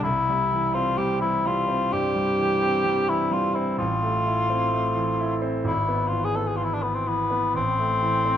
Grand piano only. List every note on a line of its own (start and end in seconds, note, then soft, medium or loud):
0.04 1.89 C2 medium
0.29 0.65 G3 soft
0.52 0.89 E3 soft
0.75 1.12 C4 soft
0.98 1.36 G3 medium
1.21 1.59 E3 soft
1.46 1.83 G3 soft
1.68 2.06 C4 soft
1.92 2.30 G2 soft
2.15 2.53 G3 soft
2.38 2.76 E3 soft
2.62 3.00 C4 soft
2.85 3.23 G3 medium
3.09 3.47 E3 soft
3.31 3.70 G3 soft
3.56 3.80 C4 soft
3.78 5.62 A1 medium
4.02 4.40 A3 soft
4.26 4.64 E4 soft
4.50 4.88 C4 soft
4.72 5.10 A3 medium
4.96 5.34 E3 soft
5.19 5.57 E4 medium
5.42 5.66 C4 medium
5.64 7.51 G#1 medium
5.88 6.27 B3 soft
6.11 6.50 E3 soft
6.35 6.74 B3 soft
6.59 6.98 E3 soft
6.82 7.22 B3 soft
7.06 7.45 E3 soft
7.30 7.55 B3 soft
7.54 8.37 A1 medium
7.78 8.16 A3 soft
8.02 8.37 E3 soft
8.25 8.37 C4 soft